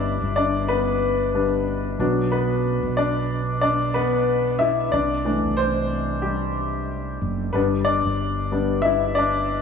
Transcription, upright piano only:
0.00 0.65 G3 soft
0.00 0.70 B3 soft
0.00 0.33 D4 medium
0.00 2.02 E4 medium
0.00 0.68 B4 medium
0.00 0.32 D5 medium
0.00 2.02 E5 medium
0.36 0.67 D4 medium
0.36 0.70 D5 medium
0.68 1.33 B3 soft
0.68 1.63 B4 medium
1.34 1.64 G3 soft
1.34 1.64 B3 soft
1.34 1.64 D4 soft
1.99 4.56 F#3 soft
1.99 2.31 B3 soft
1.99 2.97 D4 medium
2.32 2.94 B3 medium
2.32 2.99 B4 medium
2.97 3.59 D4 medium
2.97 3.60 D5 medium
3.61 3.93 D4 medium
3.61 3.92 D5 medium
3.94 4.57 B3 medium
3.94 4.62 B4 medium
4.59 4.91 E4 medium
4.59 4.93 E5 medium
4.92 5.24 D4 medium
4.92 5.60 D5 medium
5.25 7.50 E3 soft
5.25 7.50 A3 soft
5.25 7.50 D4 soft
5.57 6.20 C4 medium
5.57 6.25 C5 medium
6.22 7.18 G3 soft
6.22 7.17 G4 medium
7.53 8.50 G3 soft
7.53 7.62 B3 medium
7.53 7.86 D4 medium
7.53 7.60 B4 medium
7.85 8.51 D4 medium
7.85 8.86 D5 medium
8.52 8.81 G3 soft
8.52 8.81 B3 soft
8.52 8.81 D4 soft
8.82 9.15 E4 medium
8.82 9.17 E5 medium
9.15 9.62 D4 medium
9.15 9.62 D5 medium

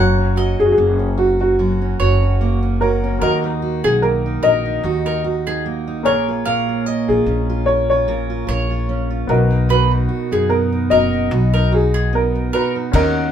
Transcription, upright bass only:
0.00 0.56 F#1 medium
0.60 0.77 F#1 medium
0.78 1.96 F#1 medium
2.00 3.18 F#1 medium
3.22 3.80 D#2 medium
3.84 4.39 B1 medium
4.43 4.80 A#1 medium
4.84 6.05 D#2 medium
6.05 7.05 A#1 medium
7.09 7.25 A#1 medium
7.26 8.44 A#1 medium
8.48 9.25 A#1 medium
9.29 10.06 B1 loud
10.32 10.87 F#2 medium
10.91 11.28 F#1 medium
11.31 12.49 B1 loud
12.93 13.32 D#2 medium

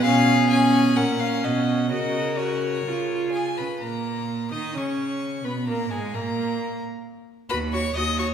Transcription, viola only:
0.05 0.49 C#4 medium
0.50 0.96 C#4 medium
0.97 1.89 C#4 medium
1.91 2.38 F#4 medium
2.38 2.89 F#4 medium
2.87 3.62 F4 medium
3.81 4.48 A#3 medium
4.52 4.75 D#4 medium
4.76 5.43 C#4 medium
5.45 5.53 B3 medium
5.68 5.90 A#3 medium
5.91 6.16 G#3 medium
6.15 6.82 A#3 medium
7.50 7.58 F#4 medium
7.74 7.82 F#4 medium
7.96 8.04 F#4 medium
8.18 8.26 F#4 medium

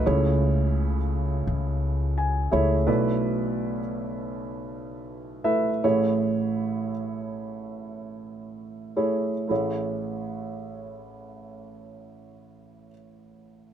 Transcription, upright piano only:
0.06 2.84 C#2 medium
0.06 2.84 C#3 medium
0.06 0.97 A3 medium
0.06 0.97 E4 medium
0.06 0.97 G#4 medium
0.06 0.97 C#5 medium
2.18 2.50 G#5 medium
2.52 2.75 A3 medium
2.52 2.75 E4 medium
2.52 2.75 G#4 medium
2.52 2.75 C#5 medium
2.52 2.85 E5 soft
2.87 5.79 B1 medium
2.87 5.79 B2 medium
2.87 3.79 A3 medium
2.87 3.79 E4 medium
2.87 3.79 B4 medium
2.87 3.79 D5 medium
5.44 5.69 A3 medium
5.44 5.69 E4 medium
5.44 5.70 B4 medium
5.44 5.70 E5 medium
5.84 9.47 A1 medium
5.84 9.47 A2 medium
5.84 6.91 A3 medium
5.84 6.91 E4 medium
5.84 6.91 G#4 medium
5.84 6.91 C#5 medium
8.96 9.31 A3 medium
8.96 9.31 E4 medium
8.96 9.31 G#4 soft
8.96 9.31 C#5 medium
9.48 12.90 A1 medium
9.48 12.88 A3 medium
9.48 12.89 E4 soft
9.48 12.90 G#4 soft
9.48 12.91 C#5 medium

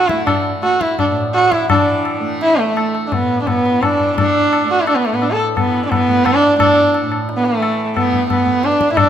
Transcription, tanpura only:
0.00 1.09 A2 medium
0.00 1.59 E3 medium
0.00 0.11 A3 medium
0.11 0.61 A3 medium
0.61 2.20 A3 medium
1.09 3.19 A2 medium
1.60 1.71 E3 medium
1.71 3.67 E3 medium
2.20 2.70 A3 medium
2.70 4.15 A3 medium
3.19 5.11 A2 medium
3.67 5.60 E3 medium
4.15 4.64 A3 medium
4.64 6.07 A3 medium
5.12 7.02 A2 medium
5.60 7.49 E3 medium
6.07 6.56 A3 medium
6.56 7.96 A3 medium
7.03 8.90 A2 medium
7.49 9.09 E3 medium
7.96 8.43 A3 medium
8.43 9.09 A3 medium
8.90 9.09 A2 medium

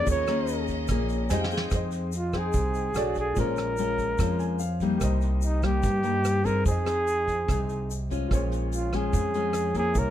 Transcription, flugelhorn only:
0.11 0.67 C#5 medium
2.17 2.40 F4 medium
2.38 3.18 G#4 medium
3.19 3.37 G#4 medium
3.40 4.78 A#4 loud
5.44 5.66 D#4 medium
5.64 6.47 G4 loud
6.45 6.66 A#4 loud
6.66 8.06 G#4 loud
8.75 8.97 F4 medium
8.95 9.76 G#4 loud
9.78 10.00 G#4 loud
9.99 10.10 A#4 loud

